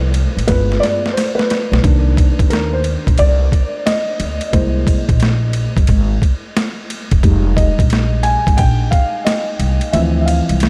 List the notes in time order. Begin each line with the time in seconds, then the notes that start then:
Already playing: C2 F3 C4 E4
0.14 ride
0.37 A1, ride
0.47 G1 G#3 B3 F4 B4, kick, snare, ride
0.72 snare
0.80 D5, snare, ride
1.06 snare
1.13 C5
1.17 snare, hi-hat pedal, ride
1.35 B4
1.39 snare
1.50 snare, ride
1.72 B1, snare
1.83 C2 D#3 A#3 D4, kick, ride
2.17 kick, ride
2.39 D#2, kick, ride
2.50 A#4, snare, hi-hat pedal, ride
2.73 C5
2.84 ride
3.07 A#1, kick, ride
3.18 C2 D5, kick, ride
3.52 kick, ride
3.86 D#5, snare, hi-hat pedal, ride
4.20 D2, ride
4.41 ride
4.53 C2 G#3 A#3 E4 C5, kick, ride
4.87 kick, ride
5.09 A#1, kick, ride
5.20 snare, hi-hat pedal, ride
5.53 ride
5.76 F#1, kick, ride
5.87 G#1, kick, ride
6.22 kick, ride
6.57 snare, hi-hat pedal, ride
6.90 ride
7.11 E1, kick, ride
7.23 F1 G3 G#3 D#4, kick, ride
7.56 D#5, kick, ride
7.79 A#1, kick, ride
7.90 snare, hi-hat pedal, ride
8.23 G#5, ride
8.47 G#1, kick, ride
8.57 A#1 G5, kick, ride
8.91 F5, kick, ride
9.25 D#5, snare, hi-hat pedal, ride
9.59 C2, ride
9.81 ride
9.93 D2 E3 F3 C4 E5, ride
10.21 E5
10.26 F5, ride
10.49 C2, ride
10.60 snare, hi-hat pedal, ride